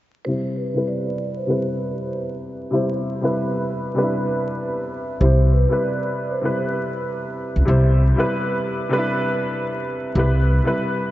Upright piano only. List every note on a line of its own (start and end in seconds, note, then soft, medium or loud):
0.26 0.60 C3 medium
0.26 0.61 G3 medium
0.26 0.62 E4 medium
0.26 0.62 C5 medium
0.74 1.30 C3 medium
0.74 1.31 G3 medium
0.74 1.31 E4 medium
0.74 1.32 B4 medium
1.47 2.39 C3 medium
1.47 2.39 G3 medium
1.47 2.40 E4 medium
1.47 2.41 B4 medium
2.71 3.06 C3 medium
2.71 3.07 G3 medium
2.71 3.08 E4 medium
2.71 3.08 C5 loud
3.21 3.77 C3 medium
3.21 3.78 G3 medium
3.21 3.79 E4 medium
3.21 3.79 B4 loud
3.95 4.87 C3 medium
3.95 4.87 G3 medium
3.95 4.05 D4 medium
3.95 4.88 B4 loud
4.04 4.91 E4 medium
5.20 5.55 C3 medium
5.20 5.56 G3 medium
5.20 5.56 E4 medium
5.20 5.57 C5 medium
5.69 6.25 C3 medium
5.69 6.25 G3 medium
5.69 6.26 E4 medium
5.69 6.27 B4 medium
6.42 7.34 C3 medium
6.42 7.34 G3 medium
6.42 7.35 E4 medium
6.42 7.36 B4 medium
7.65 8.01 C3 medium
7.65 8.02 G3 medium
7.65 8.02 E4 medium
7.65 8.03 C5 loud
8.16 8.72 C3 medium
8.16 8.73 G3 medium
8.16 8.73 E4 medium
8.16 8.74 B4 loud
8.89 9.81 C3 medium
8.89 9.82 G3 medium
8.89 9.00 D4 medium
8.89 9.83 B4 loud
8.98 9.86 E4 medium
10.15 10.50 C3 medium
10.15 10.51 G3 medium
10.15 10.51 E4 medium
10.15 10.52 B4 medium
10.64 11.11 C3 medium
10.64 11.11 G3 medium
10.64 11.11 E4 medium
10.64 11.11 B4 medium